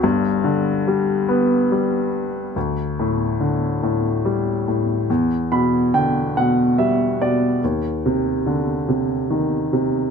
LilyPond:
\new Staff \with { instrumentName = "Grand piano" } { \clef bass \time 3/4 \key d \mixolydian \tempo 4 = 71 <g,, g,>8 d8 g8 b8 g4 | d,8 a,8 d8 a,8 g8 a,8 | e,8 <b, b''>8 <d g''>8 <b, fis''>8 <g e''>8 <b, d''>8 | ees,8 c8 d8 c8 ees8 c8 | }